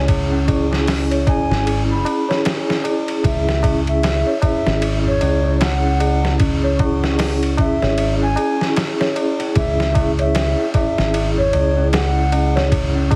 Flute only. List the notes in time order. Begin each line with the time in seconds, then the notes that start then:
1.28 G#5
1.91 B5
3.25 E5
3.88 E5
4.43 E5
5.07 C#5
5.62 F#5
7.60 E5
8.22 G#5
9.57 E5
10.20 E5
10.75 E5
11.38 C#5
11.94 F#5